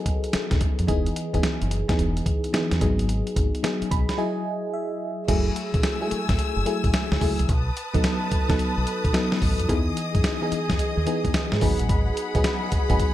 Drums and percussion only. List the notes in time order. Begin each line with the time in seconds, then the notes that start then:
0.06 kick, closed hi-hat
0.24 closed hi-hat
0.33 snare, closed hi-hat
0.51 kick, snare, closed hi-hat
0.61 kick, closed hi-hat
0.79 closed hi-hat
0.88 kick, closed hi-hat
1.06 closed hi-hat
1.16 closed hi-hat
1.34 kick, closed hi-hat
1.43 snare, closed hi-hat
1.62 closed hi-hat
1.71 closed hi-hat
1.89 kick, snare, closed hi-hat
1.99 closed hi-hat
2.17 closed hi-hat
2.26 kick, closed hi-hat
2.44 closed hi-hat
2.54 snare, closed hi-hat
2.71 snare, closed hi-hat
2.81 kick, closed hi-hat
2.99 closed hi-hat
3.09 closed hi-hat
3.27 closed hi-hat
3.36 kick, closed hi-hat
3.55 closed hi-hat
3.64 snare, closed hi-hat
3.82 closed hi-hat
3.91 kick, closed hi-hat
4.09 snare, closed hi-hat
5.28 kick, closed hi-hat, crash
5.56 closed hi-hat
5.74 kick, closed hi-hat
5.83 snare, closed hi-hat
6.11 closed hi-hat
6.29 kick, snare, closed hi-hat
6.39 closed hi-hat
6.66 closed hi-hat
6.84 kick, closed hi-hat
6.94 snare, closed hi-hat
7.12 snare
7.21 kick, open hi-hat
7.39 closed hi-hat
7.49 kick, closed hi-hat
7.77 closed hi-hat
7.94 kick, closed hi-hat
8.04 snare, closed hi-hat
8.31 kick, closed hi-hat
8.49 kick, snare, closed hi-hat
8.59 closed hi-hat
8.87 closed hi-hat
9.04 kick, closed hi-hat
9.14 snare, closed hi-hat
9.32 snare
9.42 kick, open hi-hat
9.60 closed hi-hat
9.69 kick, closed hi-hat
9.97 closed hi-hat
10.15 kick, closed hi-hat
10.24 snare, closed hi-hat
10.52 closed hi-hat
10.70 kick, snare, closed hi-hat
10.79 closed hi-hat
11.07 closed hi-hat
11.25 kick, closed hi-hat
11.34 snare, closed hi-hat
11.52 snare
11.61 kick, open hi-hat
11.79 closed hi-hat
11.89 kick, closed hi-hat
12.17 closed hi-hat
12.35 kick, closed hi-hat
12.44 snare, closed hi-hat
12.72 kick, closed hi-hat
12.90 kick, closed hi-hat
13.00 kick, closed hi-hat